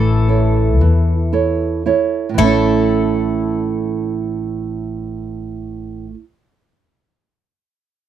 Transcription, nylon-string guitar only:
Already playing: A3
0.28 E4 A4 C#5
0.81 E3
1.33 E4 A4 C#5
1.86 E4 A4 C#5
2.29 A2
2.34 E3
2.38 A3
2.43 C#4
2.47 E4

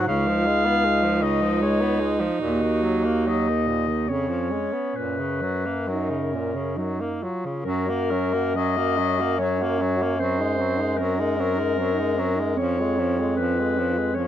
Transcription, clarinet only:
0.08 F5
1.22 D#5
1.62 C#5
2.40 F#4
3.29 D#5
4.09 C#5
4.96 B4
5.89 A#4
7.64 A#4
8.56 D#5
9.39 C#5
10.19 C5
10.97 A#4
12.57 C#5
13.37 B4
14.15 C#5

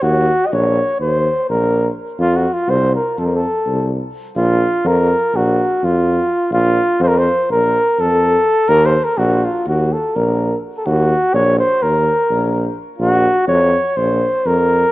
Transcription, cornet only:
0.03 F#4
0.47 D#5
0.53 C#5
1.01 C5
1.50 A#4
2.20 F4
2.36 F#4
2.54 F4
2.70 C5
2.95 A#4
3.19 A4
3.26 A#4
3.36 A4
4.38 F4
4.87 A#4
5.36 F#4
5.84 F4
6.53 F4
7.02 C5
7.08 A#4
7.18 C5
7.52 A#4
8.01 A4
8.69 A#4
8.86 C5
9.04 A#4
9.18 F#4
9.45 F4
9.68 F#4
9.93 A4
10.16 A#4
10.78 A4
10.86 F#4
11.34 C#5
11.59 C5
11.83 A#4
12.99 F#4
13.48 C#5
13.97 C5
14.46 A#4

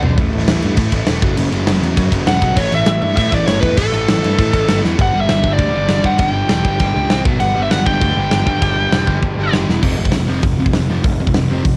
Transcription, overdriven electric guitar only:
0.04 D3 A3 D4
0.18 A2 E3 A3
0.34 A2 E3 A3
0.48 A2 E3 A3
0.62 A2 E3 A3
0.77 A2 E3 A3
0.93 A2 E3 A3
1.07 A2 E3 A3
1.22 F#2 C#3 F#3
1.37 F#2 C#3 F#3
1.52 F#2 C#3 F#3
1.68 F#2 C#3 F#3
1.83 F#2 C#3 F#3
1.98 F#2 C#3 F#3
2.12 F#2 C#3 F#3
2.27 F#2 C#3 F#3
2.42 F#2 C#3 F#3
2.56 A2 E3 A3
2.72 A2 E3 A3
2.87 A2 E3 A3
3.02 A2 E3 A3
3.16 A2 E3 A3
3.32 A2 E3 A3
3.47 A2 E3 A3
3.62 A2 E3 A3
3.78 A2 E3 A3
3.93 A2 E3 A3
4.08 A2 E3 A3
4.22 A2 E3 A3
4.39 A2 E3 A3
4.54 A2 E3 A3
4.68 A2 E3 A3
4.83 A2 E3 A3
4.97 G2 D3 G3
5.14 G2 D3 G3
5.27 G2 D3 G3
5.43 G2 D3 G3
5.58 G2 D3 G3
5.73 G2 D3 G3
5.87 G2 D3 G3
6.02 G2 D3 G3
6.17 G2 D3 G3
6.33 G2 D3 G3
6.48 G2 D3 G3
6.63 G2 D3 G3
6.79 G2 D3 G3
6.94 G2 D3 G3
7.10 C3 G3 C4
7.25 B2 F#3 B3
7.39 G2 D3 G3
7.55 G2 D3 G3
7.70 G2 D3 G3
7.86 G2 D3 G3
8.01 G2 D3 G3
8.17 G2 D3 G3
8.31 G2 D3 G3
8.47 G2 D3 G3
8.62 G2 D3 G3
8.77 G2 D3 G3
8.93 G2 D3 G3
9.08 G2 D3 G3
9.24 G2 D3 G3
9.40 G2 D3 G3
9.54 G2 D3 G3
9.69 E2 B2 E3
9.83 F2 C3 F3
9.99 F2 C3
10.14 F2 C3
10.28 F2 C3 F3
10.44 F2 C3
10.60 F2 C3
10.75 F2 C3
10.90 F2 C3 F3
11.04 F2 C3
11.21 F2 C3
11.36 F2 C3
11.50 F2 C3 F3
11.65 F2 C3

